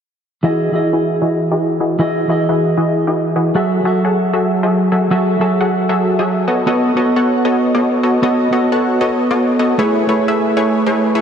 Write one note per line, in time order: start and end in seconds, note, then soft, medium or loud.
0.43 0.70 E3 medium
0.43 0.71 E3 loud
0.43 0.71 E4 medium
0.43 0.71 F#4 medium
0.43 0.71 G#4 medium
0.43 0.71 D#5 loud
0.43 0.72 D#5 medium
0.72 1.96 E3 medium
0.72 0.91 E3 medium
0.72 1.97 E4 medium
0.72 0.91 E4 medium
0.72 0.91 F#4 medium
0.72 0.91 G#4 medium
0.72 1.98 G#4 medium
0.72 0.91 D#5 medium
0.72 1.98 D#5 medium
0.93 1.20 E3 medium
0.93 1.20 E4 medium
0.93 1.20 F#4 medium
0.93 1.20 G#4 medium
0.93 1.20 E5 medium
1.22 1.49 E3 medium
1.22 1.49 E4 medium
1.22 1.49 F#4 medium
1.22 1.49 G#4 medium
1.22 1.49 D#5 loud
1.51 1.78 E3 medium
1.51 1.78 E4 medium
1.51 1.78 F#4 medium
1.51 1.78 G#4 medium
1.51 1.78 D#5 medium
1.80 1.97 E3 medium
1.80 1.97 E4 medium
1.80 1.98 F#4 medium
1.80 1.98 G#4 medium
1.80 1.97 D#5 medium
1.99 2.26 E3 loud
1.99 2.27 E3 medium
1.99 2.27 E4 medium
1.99 2.27 F#4 medium
1.99 2.27 G#4 medium
1.99 2.27 D#5 loud
2.27 3.52 E3 medium
2.27 2.46 E3 medium
2.27 3.53 E4 medium
2.27 2.46 E4 medium
2.27 2.46 F#4 medium
2.27 2.46 G#4 medium
2.27 3.54 G#4 medium
2.27 2.46 D#5 medium
2.27 3.54 D#5 medium
2.49 2.75 E3 medium
2.49 2.75 E4 medium
2.49 2.75 F#4 medium
2.49 2.75 G#4 medium
2.49 2.75 E5 medium
2.77 3.05 E3 medium
2.77 3.05 E4 medium
2.77 3.05 F#4 medium
2.77 3.05 G#4 medium
2.77 3.05 D#5 loud
3.07 3.34 E3 medium
3.07 3.34 E4 medium
3.07 3.34 F#4 medium
3.07 3.34 G#4 medium
3.07 3.34 D#5 medium
3.36 3.53 E3 medium
3.36 3.53 E4 medium
3.36 3.53 F#4 medium
3.36 3.53 G#4 medium
3.36 3.53 D#5 medium
3.54 3.82 F#3 medium
3.54 3.83 F#3 medium
3.54 3.83 F#4 medium
3.54 3.83 G#4 medium
3.54 3.83 A4 medium
3.54 3.83 E5 loud
3.54 3.83 E5 medium
3.83 5.08 F#3 medium
3.83 4.02 F#3 medium
3.83 5.09 F#4 medium
3.83 4.02 F#4 medium
3.83 4.02 G#4 medium
3.83 4.02 A4 medium
3.83 5.09 A4 medium
3.83 4.02 E5 medium
3.87 5.10 E5 medium
4.05 4.31 F#3 medium
4.05 4.31 F#4 medium
4.05 4.31 G#4 medium
4.05 4.31 A4 medium
4.05 4.31 F#5 medium
4.33 4.61 F#3 medium
4.33 4.61 F#4 medium
4.33 4.61 G#4 medium
4.33 4.61 A4 medium
4.33 4.61 E5 loud
4.63 4.90 F#3 medium
4.63 4.90 F#4 medium
4.63 4.90 G#4 medium
4.63 4.90 A4 medium
4.63 4.90 E5 medium
4.92 5.09 F#3 medium
4.92 5.09 F#4 medium
4.92 5.09 G#4 medium
4.92 5.09 A4 medium
4.92 5.09 E5 medium
5.10 5.38 F#3 loud
5.10 5.39 F#3 loud
5.10 5.38 F#4 medium
5.10 5.39 F#4 medium
5.10 5.39 G#4 medium
5.10 5.39 A4 medium
5.10 5.39 E5 loud
5.39 6.46 F#3 medium
5.39 5.58 F#3 medium
5.39 6.46 F#4 medium
5.39 5.58 F#4 medium
5.39 5.58 G#4 medium
5.39 5.58 A4 medium
5.39 6.47 A4 medium
5.39 5.58 E5 medium
5.43 6.48 E5 loud
5.61 5.87 F#3 medium
5.61 5.87 F#4 medium
5.61 5.87 G#4 medium
5.61 5.87 A4 medium
5.61 5.87 F#5 medium
5.89 6.17 F#3 medium
5.89 6.17 F#4 medium
5.89 6.17 G#4 medium
5.89 6.17 A4 medium
5.89 6.17 E5 loud
6.19 6.45 F#3 medium
6.19 6.46 F#4 medium
6.19 6.46 G#4 medium
6.19 6.46 A4 medium
6.19 6.45 E5 medium
6.48 6.65 B3 medium
6.48 6.65 F#4 medium
6.48 6.65 A4 medium
6.48 6.65 C#5 medium
6.48 6.65 D#5 medium
6.66 6.94 B3 medium
6.66 6.94 B3 loud
6.66 6.94 F#4 medium
6.66 6.94 A4 medium
6.66 6.95 A4 medium
6.66 6.94 C#5 medium
6.66 6.94 D#5 loud
6.66 6.95 D#5 medium
6.95 8.20 B3 medium
6.95 7.14 B3 medium
6.95 8.20 F#4 medium
6.95 7.14 F#4 medium
6.95 7.14 A4 medium
6.95 8.21 A4 medium
6.95 7.14 C#5 medium
6.95 7.14 D#5 medium
6.95 8.22 D#5 medium
7.16 7.43 B3 medium
7.16 7.43 F#4 medium
7.16 7.43 A4 medium
7.16 7.43 C#5 medium
7.16 7.43 F#5 medium
7.45 7.72 B3 medium
7.45 7.72 F#4 medium
7.45 7.72 A4 medium
7.45 7.72 C#5 medium
7.45 7.72 D#5 medium
7.75 8.01 B3 medium
7.75 8.01 F#4 medium
7.75 8.01 A4 medium
7.75 8.01 C#5 medium
7.75 8.01 D#5 medium
8.03 8.21 B3 medium
8.03 8.21 F#4 medium
8.03 8.21 A4 medium
8.03 8.21 C#5 medium
8.03 8.21 D#5 medium
8.22 8.50 B3 medium
8.22 8.50 F#4 medium
8.22 8.50 A4 medium
8.22 8.51 A4 medium
8.22 8.50 C#5 medium
8.22 8.50 D#5 loud
8.22 8.51 D#5 loud
8.51 9.76 B3 medium
8.51 8.70 B3 medium
8.51 9.76 F#4 medium
8.51 8.70 F#4 medium
8.51 8.70 A4 medium
8.51 9.77 A4 medium
8.51 8.70 C#5 medium
8.51 8.70 D#5 medium
8.55 9.78 D#5 loud
8.72 8.99 B3 medium
8.72 8.99 F#4 medium
8.72 8.99 A4 medium
8.72 8.99 C#5 medium
8.72 8.99 F#5 medium
9.01 9.28 B3 medium
9.01 9.28 F#4 medium
9.01 9.28 A4 medium
9.01 9.28 C#5 medium
9.01 9.28 D#5 loud
9.31 9.57 B3 medium
9.31 9.57 F#4 medium
9.31 9.57 A4 medium
9.31 9.57 C#5 medium
9.31 9.57 D#5 medium
9.59 9.77 B3 medium
9.59 9.77 F#4 medium
9.59 9.77 A4 medium
9.59 9.77 C#5 medium
9.59 9.77 D#5 medium
9.78 10.05 A3 medium
9.78 10.06 A3 loud
9.78 10.06 E4 medium
9.78 10.06 G#4 medium
9.78 10.06 B4 medium
9.78 10.06 C#5 loud
9.78 10.07 C#5 loud
10.07 11.21 A3 medium
10.07 10.26 A3 medium
10.07 11.21 E4 medium
10.07 10.26 E4 medium
10.07 10.26 G#4 medium
10.07 11.21 G#4 medium
10.07 10.26 B4 medium
10.07 10.26 C#5 medium
10.11 11.21 C#5 medium
10.28 10.55 A3 medium
10.28 10.55 E4 medium
10.28 10.55 G#4 medium
10.28 10.55 B4 medium
10.28 10.55 E5 medium
10.57 10.84 A3 medium
10.57 10.84 E4 medium
10.57 10.84 G#4 medium
10.57 10.84 B4 medium
10.57 10.84 C#5 loud
10.86 11.13 A3 medium
10.86 11.13 E4 medium
10.86 11.13 G#4 medium
10.86 11.13 B4 medium
10.86 11.13 C#5 medium
11.15 11.21 A3 medium
11.15 11.21 E4 medium
11.15 11.21 G#4 medium
11.15 11.21 B4 medium
11.15 11.21 C#5 medium